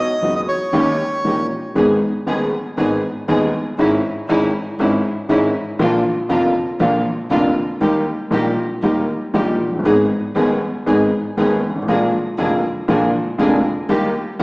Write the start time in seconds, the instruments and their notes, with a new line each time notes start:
Already playing: bandoneon D#5
0.22 upright piano F#1 F#2 D#3 F#3 B3 F#4, upright bass F#1, string section B3 D#4 F#4
0.36 bandoneon D#5
0.48 bandoneon C#5
0.73 upright piano D#2 D#3 A#3 C#4 G4, upright bass D#2, string section C#4 D#4 G4
1.24 upright piano A#1 A#2 D#3 A#3 C#4 G4, upright bass A#1, string section C#4 D#4 G4
1.75 upright piano G#1 G#2 D#3 G#3 B3 G#4, upright bass G#1, string section B3 D#4 G#4
2.26 upright piano D#1 D#2 D#3 G#3 B3 G#4, upright bass D#2, string section B3 D#4 G#4
2.77 upright piano G#1 G#2 D#3 G#3 B3 G#4, upright bass G#1, string section B3 D#4 G#4
3.28 upright piano D#1 D#2 D#3 G#3 B3 G#4, upright bass D#2, string section B3 D#4 G#4
3.78 upright piano G#1 G#2 D#3 G#3 C#4 E4, upright bass G#1, string section C#4 D#4 E4
4.29 upright piano G#1 G#2 D#3 G#3 C#4 E4, upright bass G#1, string section C#4 D#4 E4
4.79 upright bass G#1, upright piano G#1 G#2 D#3 G#3 C#4 E4, string section C#4 D#4 E4
5.29 upright piano G#1 G#2 D#3 G#3 C#4 E4, upright bass G#1, string section C#4 D#4 E4
5.79 upright bass A#1, upright piano A#1 A#2 D3 F3 A#3 F4, string section A#3 D4 F4
6.29 upright piano F1 F2 D3 F3 A#3 F4, upright bass F1, string section A#3 D4 F4
6.80 upright bass A#1, upright piano A#1 A#2 D3 F3 A#3 F4, string section A#3 D4 F4
7.30 upright bass F1, upright piano F1 F2 D3 F3 A#3 F4, string section A#3 D4 F4
7.80 upright bass D#2, upright piano D#2 D#3 G3 A#3 G4, string section A#3 D#4 G4
8.30 upright piano A#1 A#2 D#3 G3 A#3 G4, upright bass A#1, string section A#3 D#4 G4
8.82 upright bass D#2, upright piano D#2 D#3 G3 A#3 G4, string section A#3 D#4 G4
9.34 upright piano A#1 A#2 D#3 G3 A#3 G4, upright bass A#1, string section A#3 D#4 G4
9.66 upright piano F1, upright bass F1
9.73 upright piano F#1, upright bass F#1
9.79 upright piano G1, upright bass G1
9.85 upright piano G#1 G#2 D#3 G#3 B3 G#4, upright bass G#1, string section B3 D#4 G#4
10.35 upright piano D#1 D#2 D#3 G#3 B3 G#4, upright bass D#2, string section B3 D#4 G#4
10.86 upright piano G#1 G#2 D#3 G#3 B3 G#4, upright bass G#1, string section B3 D#4 G#4
11.37 upright piano D#1 D#2 D#3 G#3 B3 G#4, upright bass D#2, string section B3 D#4 G#4
11.69 upright piano G1, upright bass G1
11.75 upright piano G#1, upright bass G#1
11.82 upright bass A1, upright piano A1
11.88 upright bass A#1, upright piano A#1 A#2 D3 G#3 A#3 F4, string section A#3 D4 G#4
12.38 upright piano F1 F2 D3 G#3 A#3 F4, upright bass F1, string section A#3 D4 G#4
12.88 upright piano A#1 A#2 D3 G#3 A#3 F4, upright bass A#1, string section A#3 D4 G#4
13.38 upright piano F1 F2 D3 G#3 A#3 F4, upright bass F1, string section A#3 D4 G#4
13.89 upright bass D#2, upright piano D#2 D#3 G3 A#3 G4, string section A#3 D#4 G4
14.39 upright bass A#1, upright piano A#1 A#2 D#3 G3 A#3 G4